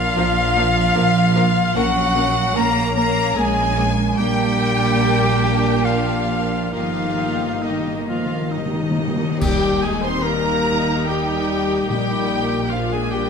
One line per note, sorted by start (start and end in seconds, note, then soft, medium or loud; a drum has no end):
0.00 1.78 F3 loud
0.00 1.60 A#3 medium
0.00 1.60 D4 medium
0.00 1.76 F4 loud
0.00 1.74 F5 loud
0.17 0.88 A#1 loud
0.17 0.25 F3 medium
0.17 0.26 A#3 medium
0.17 0.25 D4 medium
0.17 0.25 A#4 medium
0.55 0.63 F3 medium
0.55 0.64 A#3 medium
0.55 0.64 D4 medium
0.55 0.65 A#4 medium
0.95 1.68 A#1 loud
0.95 1.03 F3 medium
0.95 1.03 A#3 medium
0.95 1.04 D4 medium
0.95 1.03 A#4 medium
1.35 1.43 F3 medium
1.35 1.43 A#3 medium
1.35 1.45 D4 medium
1.35 1.45 A#4 medium
1.74 2.49 A#1 loud
1.74 2.93 A#2 loud
1.74 2.57 F#3 loud
1.74 1.83 A#3 medium
1.74 6.70 A#3 medium
1.74 1.84 C#4 medium
1.74 4.15 C#4 medium
1.74 2.58 F#4 loud
1.74 1.84 A#4 medium
1.74 2.56 F#5 loud
1.74 2.58 F#5 loud
2.15 2.24 A#3 medium
2.15 2.25 C#4 medium
2.15 2.25 A#4 medium
2.55 3.28 A#1 loud
2.55 2.63 A#3 medium
2.55 2.96 A#3 loud
2.55 2.64 C#4 medium
2.55 2.97 A#4 loud
2.55 2.65 A#4 medium
2.55 2.96 A#5 loud
2.55 2.94 A#5 loud
2.95 3.04 A#3 medium
2.95 3.37 A#3 loud
2.95 3.04 C#4 medium
2.95 3.04 A#4 medium
2.95 3.38 A#4 loud
2.95 3.36 A#5 loud
2.95 3.37 A#5 loud
3.35 4.10 A#1 medium
3.35 4.18 G#3 loud
3.35 3.45 A#3 medium
3.35 3.43 C#4 medium
3.35 3.91 G#4 loud
3.35 3.43 A#4 medium
3.35 4.19 G#5 loud
3.35 3.91 G#5 loud
3.76 3.85 A#3 medium
3.76 3.84 C#4 medium
3.76 3.84 A#4 medium
4.18 6.71 A#1 medium
4.18 5.86 G3 loud
4.18 6.70 A#3 medium
4.18 6.70 D4 loud
4.18 6.71 D4 medium
4.18 5.87 G4 loud
4.18 6.70 G4 loud
4.18 5.81 G5 loud
4.18 5.86 G5 loud
5.84 6.73 F3 medium
5.84 6.73 F4 medium
5.84 6.74 F5 medium
6.73 9.16 G1 medium
6.73 6.82 D#3 soft
6.73 7.62 F3 medium
6.73 7.60 A#3 medium
6.73 8.06 A#3 medium
6.73 7.61 D#4 medium
6.73 8.08 D#4 medium
6.73 7.64 F4 medium
6.73 7.61 G4 medium
6.73 7.62 F5 medium
6.73 7.66 F5 medium
6.83 6.88 D#3 soft
6.90 6.97 D#3 soft
6.99 7.04 D#3 soft
7.05 7.13 D#3 soft
7.14 7.21 D#3 soft
7.22 7.30 D#3 soft
7.31 7.38 D#3 soft
7.39 7.46 D#3 medium
7.47 7.53 D#3 soft
7.55 7.62 D#3 soft
7.62 7.69 D#3 medium
7.62 8.97 D#3 medium
7.62 9.16 A#3 medium
7.62 8.07 D#4 medium
7.62 8.07 G4 medium
7.62 8.97 D#5 medium
7.62 8.08 D#5 medium
7.71 7.78 D#3 medium
7.79 7.85 D#3 medium
7.86 7.93 D#3 medium
7.94 8.02 D#3 medium
8.03 8.10 D#3 medium
8.07 8.17 D#3 medium
8.07 8.50 F3 medium
8.07 8.49 F4 medium
8.07 8.54 F4 medium
8.07 8.49 F5 medium
8.19 8.25 D#3 medium
8.26 8.33 D#3 medium
8.34 8.41 D#3 medium
8.42 8.48 D#3 medium
8.49 8.57 D#3 medium
8.49 9.40 D#4 medium
8.49 9.39 D#4 medium
8.49 9.41 D#5 medium
8.54 9.24 D#3 medium
8.54 8.65 D#3 medium
8.66 8.72 D#3 medium
8.74 8.81 D#3 medium
8.82 8.89 D#3 loud
8.91 8.97 D#3 loud
8.98 9.06 D#3 medium
9.08 9.15 D#3 loud
9.16 9.23 D#3 loud
9.24 9.30 D#3 loud
9.31 9.38 D#3 loud
9.40 11.86 D#2 medium
9.40 11.86 D#3 medium
9.40 10.63 D#3 medium
9.40 11.85 G3 medium
9.40 9.82 G3 medium
9.40 12.67 D#4 medium
9.40 9.86 G4 medium
9.40 9.82 G4 medium
9.40 9.82 G5 loud
9.40 concert bass drum medium
9.40 crash medium
9.82 10.04 G#3 medium
9.82 10.03 G#4 medium
9.82 10.02 G#4 medium
9.82 10.04 G#5 medium
10.02 10.25 C4 medium
10.02 10.24 C5 medium
10.02 10.23 C5 medium
10.02 10.24 C5 medium
10.02 10.25 C6 loud
10.22 11.08 A#3 medium
10.22 11.09 A#4 medium
10.22 11.07 A#4 medium
10.22 11.09 A#5 loud
11.07 11.88 G3 medium
11.07 11.88 G4 medium
11.07 11.89 G4 medium
11.07 11.88 G4 medium
11.07 11.88 G5 medium
11.89 13.30 A#1 medium
11.89 13.30 A#2 medium
11.89 13.08 A#2 medium
11.89 12.69 G3 medium
11.89 13.30 A#3 medium
11.89 12.72 G4 medium
11.89 12.69 G4 medium
11.89 12.75 G4 medium
11.89 12.70 G5 loud
12.70 12.92 F3 medium
12.70 13.30 D4 medium
12.70 12.94 F4 medium
12.70 12.92 F4 medium
12.70 12.95 F4 medium
12.70 12.91 F5 medium
12.92 13.13 G#3 medium
12.92 13.12 G#4 medium
12.92 13.14 G#4 medium
12.92 13.13 G#5 medium
13.10 13.30 G3 medium
13.10 13.30 G4 medium
13.10 13.30 G5 medium